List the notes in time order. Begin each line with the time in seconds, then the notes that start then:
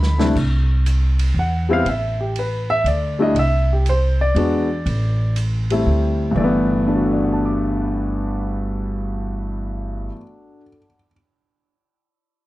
Already playing: D2 B5
0.03 snare
0.18 C3 G3 A3 D4 E4, snare
0.35 C2, kick, crash
0.86 hi-hat pedal, ride
1.19 ride
1.34 E2
1.39 F#5
1.69 G3 B3 C4 E4
1.73 F5
1.85 A1 E5, ride
2.21 G4
2.36 B4, ride
2.70 E5
2.84 D2 D5, hi-hat pedal, ride
3.19 G3 A3 D4 E4 D#5
3.35 C2, ride
3.39 E5
3.73 G4
3.86 C5, hi-hat pedal, ride
4.21 D5
4.35 E2 G#3 B3 D4 F#4, ride
4.86 A1, ride
5.36 hi-hat pedal, ride
5.70 G3 A3 C4 E4, ride
5.86 D2
6.31 G2
6.36 G1 E3 D5
6.40 A3
6.44 B3
6.88 D4
6.95 F#4
7.04 A4
7.13 D5
7.23 F#5
7.33 A5
7.45 D6